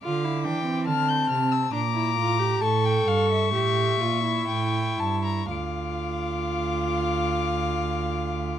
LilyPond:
<<
  \new Staff \with { instrumentName = "Violin" } { \time 3/4 \key d \minor \tempo 4 = 63 d'''4 f'''16 g'''16 f'''16 e'''16 d'''4 | cis'''2. | d'''2. | }
  \new Staff \with { instrumentName = "Violin" } { \time 3/4 \key d \minor f''8 g''8 a''4 bes''4 | a''16 g''16 f''16 e''16 e''4 g''8 a''16 bes''16 | f''2. | }
  \new Staff \with { instrumentName = "Viola" } { \time 3/4 \key d \minor f'16 e'16 d'16 c'4~ c'16 d'16 e'16 f'16 g'16 | a'4 g'8 f'16 e'4~ e'16 | f'2. | }
  \new Staff \with { instrumentName = "Cello" } { \clef bass \time 3/4 \key d \minor d8 e8 d8 c8 bes,8 a,8 | a,8 g,8 a,8 bes,8 a,8 g,8 | d,2. | }
>>